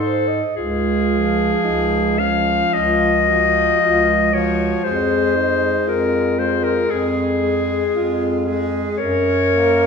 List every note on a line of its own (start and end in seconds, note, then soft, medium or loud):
0.00 0.43 G#2 medium
0.00 0.40 A4 medium
0.00 0.29 C5 medium
0.28 0.56 D#5 medium
0.56 1.51 C#2 medium
0.56 1.66 F4 medium
0.56 2.21 G#4 medium
1.11 2.17 F3 medium
1.64 2.60 C#2 medium
1.64 2.21 D#4 medium
2.19 3.26 F3 medium
2.19 2.75 C#4 medium
2.19 2.75 F5 medium
2.73 3.69 C#2 medium
2.73 3.29 F4 medium
2.73 4.35 D#5 loud
3.28 4.31 F3 medium
3.28 3.81 F#4 medium
3.80 4.72 C#2 medium
3.80 4.17 F4 medium
4.33 4.83 F3 medium
4.33 4.86 F#4 medium
4.33 4.86 C#5 medium
4.84 5.75 F2 medium
4.84 5.35 G#3 medium
4.84 5.37 G#4 medium
4.84 5.87 C5 medium
5.36 6.36 G#3 medium
5.36 5.89 D#4 medium
5.87 6.78 F2 medium
5.87 6.92 F4 medium
5.87 6.40 A#4 medium
6.38 7.25 G#3 medium
6.38 6.65 C5 medium
6.63 6.92 A#4 loud
6.91 7.83 F2 medium
6.91 7.68 G#4 medium
6.91 8.47 G#4 medium
7.42 8.44 G#3 medium
7.95 8.86 F2 medium
7.95 8.43 F4 medium
8.46 8.98 G#3 medium
8.46 9.00 G#4 medium
8.98 9.87 F#2 medium
8.98 9.87 A#4 loud
8.98 9.87 C#5 loud
9.50 9.87 A#3 medium